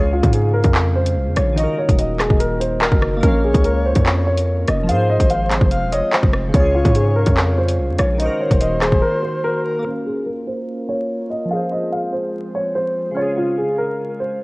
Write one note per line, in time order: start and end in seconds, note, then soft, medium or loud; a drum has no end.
0.00 0.22 C#2 loud
0.00 1.52 C#3 medium
0.00 1.54 G#3 medium
0.00 1.54 C#4 medium
0.00 1.56 C#4 medium
0.00 1.54 F4 medium
0.00 1.55 F4 medium
0.00 1.57 G#4 medium
0.00 1.56 F5 medium
0.13 0.30 F4 medium
0.23 0.63 G#2 loud
0.23 kick loud
0.23 closed hi-hat medium
0.33 0.51 G#4 medium
0.33 closed hi-hat medium
0.54 0.93 A#4 medium
0.64 1.18 F2 loud
0.64 kick loud
0.64 closed hi-hat medium
0.75 clap loud
0.96 1.35 C5 medium
1.06 closed hi-hat loud
1.16 1.28 C2 loud
1.27 1.36 F2 loud
1.36 1.67 A#1 loud
1.36 1.54 C#5 medium
1.36 cross-stick loud
1.36 closed hi-hat medium
1.53 3.17 D#3 medium
1.53 3.19 D#4 medium
1.57 4.86 A#3 medium
1.57 3.22 D#4 medium
1.57 3.22 F#4 medium
1.57 3.21 F#4 medium
1.57 1.75 D#5 medium
1.57 3.22 D#5 medium
1.57 closed hi-hat medium
1.63 3.20 A#4 medium
1.78 1.96 C#5 medium
1.89 2.28 D#1 loud
1.89 kick loud
1.89 closed hi-hat medium
1.99 2.16 D#5 medium
1.99 closed hi-hat medium
2.20 2.37 G#4 medium
2.20 cross-stick loud
2.20 clap medium
2.20 closed hi-hat medium
2.30 2.90 D#1 loud
2.30 kick medium
2.40 2.57 A#4 medium
2.40 closed hi-hat medium
2.61 2.78 C5 medium
2.61 closed hi-hat medium
2.82 3.21 A#4 loud
2.82 clap loud
2.92 3.22 F#1 loud
2.92 kick loud
3.03 cross-stick loud
3.17 4.82 A#3 medium
3.17 4.84 A#4 medium
3.23 3.53 A#1 loud
3.23 4.87 C#4 medium
3.23 4.86 C#4 medium
3.23 8.16 F4 medium
3.23 3.40 A#4 medium
3.23 4.87 A#4 medium
3.23 4.43 C#5 loud
3.23 kick loud
3.23 closed hi-hat medium
3.28 4.88 F5 medium
3.44 3.61 G#4 medium
3.54 3.94 C#2 loud
3.54 kick loud
3.54 closed hi-hat medium
3.64 3.82 A#4 medium
3.64 closed hi-hat medium
3.85 4.24 C5 medium
3.95 4.65 F2 loud
3.95 kick loud
3.95 closed hi-hat medium
4.06 clap loud
4.27 4.66 C#5 medium
4.37 closed hi-hat loud
4.67 4.90 F1 loud
4.67 4.85 D#5 medium
4.67 cross-stick loud
4.67 closed hi-hat medium
4.83 6.48 F3 medium
4.83 6.50 F4 medium
4.89 5.18 G#2 loud
4.89 6.53 G#3 medium
4.89 6.53 C4 medium
4.89 6.52 G#4 medium
4.89 5.67 C5 loud
4.89 6.53 C5 medium
4.89 5.06 F5 medium
4.89 closed hi-hat medium
4.94 6.54 C5 medium
5.10 5.27 D#5 medium
5.20 5.60 G#1 loud
5.20 kick loud
5.20 closed hi-hat medium
5.30 5.47 F5 medium
5.30 closed hi-hat medium
5.51 5.90 C5 medium
5.51 clap medium
5.51 closed hi-hat medium
5.61 5.83 F1 loud
5.61 kick medium
5.71 5.91 F5 loud
5.71 closed hi-hat medium
5.82 5.94 D#1 loud
5.92 6.02 F1 loud
5.92 6.10 C#5 medium
5.92 6.12 D#5 medium
5.92 closed hi-hat medium
6.13 6.52 C5 medium
6.13 clap loud
6.23 6.53 F1 loud
6.23 kick loud
6.34 cross-stick loud
6.49 8.14 C#3 medium
6.49 8.16 C#4 medium
6.54 6.84 C#2 loud
6.54 8.18 G#3 medium
6.54 8.18 C#4 medium
6.54 8.18 F4 medium
6.54 7.74 C#5 loud
6.54 6.72 C#5 medium
6.54 8.18 F5 medium
6.54 kick loud
6.54 closed hi-hat medium
6.60 8.19 G#4 medium
6.75 6.92 F4 medium
6.85 7.25 G#2 loud
6.85 kick loud
6.85 closed hi-hat medium
6.95 7.13 G#4 medium
6.95 closed hi-hat medium
7.16 7.55 A#4 medium
7.26 7.80 F2 loud
7.26 kick medium
7.26 closed hi-hat medium
7.37 clap loud
7.58 7.97 C5 medium
7.68 closed hi-hat medium
7.78 7.90 C2 loud
7.89 7.99 F2 loud
7.98 8.29 A#1 loud
7.98 8.16 C#5 medium
7.98 cross-stick loud
7.98 closed hi-hat medium
8.15 9.79 D#3 medium
8.15 9.81 D#4 medium
8.20 9.84 A#3 medium
8.20 9.84 D#4 medium
8.20 9.84 F#4 medium
8.20 9.83 F#4 medium
8.20 9.84 A#4 medium
8.20 9.61 C5 loud
8.20 8.37 D#5 medium
8.20 closed hi-hat medium
8.26 9.82 A#4 medium
8.41 8.58 C#5 medium
8.51 8.91 D#1 loud
8.51 kick loud
8.51 closed hi-hat medium
8.61 8.78 D#5 medium
8.61 closed hi-hat medium
8.82 8.99 G#4 medium
8.82 cross-stick loud
8.82 clap medium
8.82 closed hi-hat medium
8.92 9.02 D#1 loud
8.92 kick medium
9.02 9.19 A#4 medium
9.23 9.40 C5 medium
9.44 9.83 A#4 medium
9.64 9.84 A#4 medium
9.79 11.44 A#3 medium
9.79 11.46 A#4 medium
9.85 11.49 A#3 medium
9.85 11.49 C#4 medium
9.85 11.48 C#4 medium
9.85 11.49 F4 medium
9.85 10.02 A#4 medium
9.85 11.49 A#4 medium
9.90 11.50 F5 medium
10.06 10.23 G#4 medium
10.26 10.44 A#4 medium
10.47 10.86 C5 medium
10.89 11.28 C#5 medium
11.30 11.47 D#5 medium
11.45 13.10 F3 medium
11.45 13.12 F4 medium
11.51 14.44 G#3 medium
11.51 13.15 C4 medium
11.51 14.44 F4 medium
11.51 13.14 G#4 medium
11.51 13.15 C5 medium
11.51 11.68 F5 medium
11.56 13.16 C5 medium
11.72 11.89 D#5 medium
11.92 12.09 F5 medium
12.13 12.52 C5 medium
12.55 12.72 C#5 medium
12.75 13.14 C5 medium
13.11 14.44 C#3 medium
13.11 14.44 C#4 medium
13.16 14.44 C#4 medium
13.16 14.44 F4 medium
13.16 13.34 C#5 medium
13.16 14.44 F5 medium
13.22 14.44 G#4 medium
13.37 13.54 F4 medium
13.58 13.75 G#4 medium
13.78 14.17 A#4 medium
14.20 14.44 C5 medium